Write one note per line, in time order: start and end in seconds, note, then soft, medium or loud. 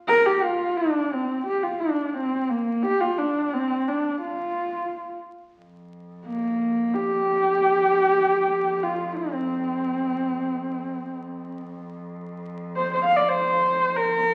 0.08 0.27 A#4 loud
0.26 0.44 G4 loud
0.43 0.78 F4 loud
0.77 1.14 D4 medium
1.12 1.46 C4 medium
1.46 1.64 G4 loud
1.63 1.82 F4 medium
1.80 2.08 D4 medium
2.08 2.16 D4 medium
2.14 2.51 C4 medium
2.50 2.85 A#3 medium
2.83 3.02 G4 loud
3.00 3.20 F4 medium
3.18 3.55 D4 medium
3.53 3.89 C4 medium
3.88 4.20 D4 medium
4.21 5.19 F4 medium
5.57 11.05 F2 medium
6.26 6.95 A#3 medium
6.94 8.84 G4 loud
8.83 9.18 F4 medium
9.16 11.77 C4 medium
11.06 14.34 F2 medium
12.76 12.91 C5 medium
12.93 13.04 C5 medium
13.04 13.17 F5 medium
13.16 13.30 D5 medium
13.28 13.98 C5 loud
13.97 14.34 A#4 loud